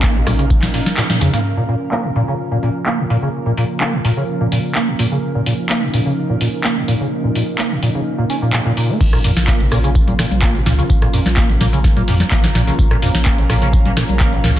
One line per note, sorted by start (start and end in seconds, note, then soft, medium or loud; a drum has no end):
0.00 1.41 C#3 medium
0.00 1.41 F3 medium
0.00 1.41 A#3 medium
0.00 0.17 A#3 loud
0.00 9.00 C#4 medium
0.00 1.41 D#4 medium
0.00 9.01 A#4 medium
0.00 9.01 F5 medium
0.00 9.01 A#5 medium
0.00 kick loud
0.00 clap loud
0.00 tambourine medium
0.15 0.68 A#1 medium
0.15 0.22 A#2 medium
0.27 0.33 A#2 loud
0.27 cross-stick medium
0.27 open hi-hat loud
0.27 tambourine medium
0.27 low conga medium
0.39 0.45 C#3 medium
0.39 closed hi-hat medium
0.50 kick loud
0.50 tambourine medium
0.62 0.69 A#2 medium
0.62 snare medium
0.62 clap soft
0.62 closed hi-hat soft
0.62 low conga medium
0.74 0.81 A#2 medium
0.74 snare soft
0.74 open hi-hat loud
0.74 open hi-hat medium
0.86 snare medium
0.86 closed hi-hat medium
0.86 low conga medium
0.97 1.02 A#2 loud
0.97 snare loud
0.97 clap loud
0.97 tambourine medium
1.10 1.19 A#2 medium
1.10 snare medium
1.10 closed hi-hat medium
1.10 high tom medium
1.21 1.29 F2 loud
1.21 1.31 C#3 loud
1.21 snare loud
1.21 open hi-hat loud
1.21 mid tom medium
1.21 tambourine medium
1.33 1.40 A#3 loud
1.33 snare loud
1.33 snare soft
1.33 closed hi-hat medium
1.33 mid tom medium
1.33 tambourine medium
1.45 8.97 C#3 medium
1.45 8.97 F3 medium
1.45 8.97 A#3 medium
1.45 5.19 F4 medium
1.57 1.63 A#2 medium
1.68 1.75 A#2 medium
1.68 open hi-hat loud
1.92 2.06 A#3 loud
1.92 clap loud
2.04 2.11 A#2 medium
2.16 2.22 A#2 loud
2.16 open hi-hat loud
2.28 2.34 C#3 medium
2.52 2.58 A#2 medium
2.63 2.70 A#2 medium
2.63 open hi-hat loud
2.86 3.00 A#3 medium
2.86 clap loud
2.99 3.05 A#2 medium
3.10 3.17 A#2 loud
3.10 open hi-hat medium
3.22 3.29 C#3 medium
3.46 3.52 A#2 medium
3.57 3.64 A#2 medium
3.57 open hi-hat loud
3.81 3.95 A#3 loud
3.81 clap loud
3.93 3.99 A#2 medium
4.05 4.11 A#2 loud
4.05 open hi-hat loud
4.17 4.23 C#3 medium
4.41 4.47 A#2 medium
4.52 4.59 A#2 medium
4.52 open hi-hat loud
4.75 4.89 A#3 loud
4.75 clap loud
4.88 4.94 A#2 medium
4.99 5.06 A#2 loud
4.99 open hi-hat loud
5.12 5.18 C#3 medium
5.22 8.97 D#4 medium
5.35 5.41 A#2 medium
5.46 5.53 A#2 medium
5.46 open hi-hat loud
5.69 5.84 A#3 loud
5.69 clap loud
5.82 5.89 A#2 medium
5.94 6.00 A#2 loud
5.94 open hi-hat loud
6.06 6.12 C#3 medium
6.30 6.36 A#2 medium
6.41 6.48 A#2 medium
6.41 open hi-hat loud
6.64 6.78 A#3 loud
6.64 clap loud
6.77 6.83 A#2 medium
6.88 6.95 A#2 loud
6.88 open hi-hat loud
7.00 7.07 C#3 medium
7.24 7.30 A#2 medium
7.35 7.42 A#2 medium
7.35 open hi-hat loud
7.58 7.73 A#3 loud
7.58 clap loud
7.71 7.77 A#2 medium
7.82 7.89 A#2 loud
7.82 open hi-hat loud
7.95 8.01 C#3 medium
8.18 8.25 A#2 medium
8.30 8.37 C#4 medium
8.30 open hi-hat loud
8.42 8.51 A#2 medium
8.53 8.60 A#2 medium
8.53 clap loud
8.66 8.72 A#2 medium
8.77 8.91 A#2 medium
8.77 open hi-hat loud
8.89 8.99 A#3 medium
9.01 9.16 A#1 loud
9.01 14.59 C#3 medium
9.01 14.59 F3 medium
9.01 14.59 A#3 medium
9.01 14.59 C#4 medium
9.01 12.77 F4 medium
9.01 kick loud
9.01 tambourine medium
9.01 crash loud
9.13 9.19 A#2 medium
9.13 cross-stick medium
9.20 14.59 F5 medium
9.24 9.32 F2 medium
9.24 9.31 A#2 medium
9.24 open hi-hat loud
9.24 tambourine medium
9.37 9.52 A#1 medium
9.37 snare medium
9.37 closed hi-hat medium
9.37 closed hi-hat soft
9.41 14.59 A#4 medium
9.47 9.62 A#3 loud
9.47 kick loud
9.47 snare loud
9.47 clap loud
9.47 tambourine medium
9.60 10.12 A#1 medium
9.60 9.67 A#2 medium
9.60 closed hi-hat medium
9.72 9.78 A#2 loud
9.72 cross-stick medium
9.72 open hi-hat medium
9.72 tambourine medium
9.84 9.90 C#3 medium
9.84 closed hi-hat medium
9.95 kick loud
9.95 tambourine medium
10.05 10.14 A#2 medium
10.05 14.59 A#5 medium
10.05 closed hi-hat medium
10.05 low conga medium
10.19 10.26 A#2 medium
10.19 cross-stick medium
10.19 snare medium
10.19 open hi-hat loud
10.19 tambourine medium
10.31 10.60 A#1 medium
10.31 closed hi-hat medium
10.31 low conga medium
10.42 10.56 A#3 loud
10.42 kick loud
10.42 snare loud
10.42 clap loud
10.42 tambourine medium
10.55 10.61 A#2 medium
10.55 closed hi-hat soft
10.66 10.82 C#2 loud
10.66 10.73 A#2 loud
10.66 snare medium
10.66 open hi-hat medium
10.66 tambourine medium
10.78 10.85 C#3 medium
10.78 closed hi-hat medium
10.90 11.05 A#1 loud
10.90 kick loud
10.90 tambourine medium
11.02 11.08 A#2 medium
11.02 cross-stick medium
11.02 closed hi-hat soft
11.13 11.21 F2 medium
11.13 11.20 A#2 medium
11.13 open hi-hat loud
11.13 tambourine medium
11.26 11.41 A#1 medium
11.26 snare soft
11.26 snare medium
11.26 closed hi-hat medium
11.26 low conga medium
11.37 11.51 A#3 loud
11.37 kick loud
11.37 snare loud
11.37 clap loud
11.37 tambourine medium
11.49 12.02 A#1 medium
11.49 11.55 A#2 medium
11.49 closed hi-hat medium
11.60 11.67 A#2 loud
11.60 snare soft
11.60 open hi-hat loud
11.60 tambourine medium
11.60 low conga loud
11.73 11.79 C#3 medium
11.73 closed hi-hat medium
11.84 kick loud
11.84 snare soft
11.84 tambourine medium
11.96 12.03 A#2 medium
11.96 closed hi-hat medium
11.96 low conga medium
12.08 12.24 F2 loud
12.08 12.15 A#2 medium
12.08 snare soft
12.08 open hi-hat loud
12.08 open hi-hat medium
12.20 snare medium
12.20 closed hi-hat medium
12.20 low conga loud
12.31 12.47 A#1 loud
12.31 12.45 A#3 loud
12.31 kick loud
12.31 snare loud
12.31 clap loud
12.31 tambourine medium
12.44 12.50 A#2 medium
12.44 snare medium
12.44 closed hi-hat soft
12.55 12.71 A#1 loud
12.55 12.62 A#2 loud
12.55 snare medium
12.55 open hi-hat loud
12.55 tambourine medium
12.67 12.74 C#3 medium
12.67 snare soft
12.67 closed hi-hat medium
12.79 12.94 A#1 loud
12.79 14.59 C#4 medium
12.79 kick loud
12.79 tambourine medium
12.91 12.97 A#2 medium
12.91 cross-stick medium
13.02 13.10 F2 medium
13.02 13.09 A#2 medium
13.02 open hi-hat loud
13.02 tambourine medium
13.15 13.30 A#1 medium
13.15 snare medium
13.15 closed hi-hat medium
13.15 closed hi-hat soft
13.25 13.40 A#3 loud
13.25 kick loud
13.25 snare loud
13.25 clap loud
13.25 tambourine medium
13.38 13.91 A#1 medium
13.38 13.45 A#2 medium
13.38 closed hi-hat medium
13.50 13.56 A#2 loud
13.50 cross-stick medium
13.50 open hi-hat loud
13.50 tambourine medium
13.62 13.68 C#3 medium
13.62 closed hi-hat medium
13.73 kick loud
13.73 tambourine medium
13.86 13.92 A#2 medium
13.86 closed hi-hat medium
13.86 low conga medium
13.97 14.04 A#2 medium
13.97 cross-stick medium
13.97 snare medium
13.97 open hi-hat loud
13.97 tambourine medium
14.09 14.38 A#1 medium
14.09 closed hi-hat medium
14.09 low conga loud
14.20 14.34 A#3 loud
14.20 kick loud
14.20 snare loud
14.20 clap loud
14.20 tambourine medium
14.33 14.39 A#2 medium
14.33 closed hi-hat soft
14.44 14.59 C#2 loud
14.44 14.51 A#2 loud
14.44 snare medium
14.44 open hi-hat loud
14.44 tambourine medium
14.56 closed hi-hat medium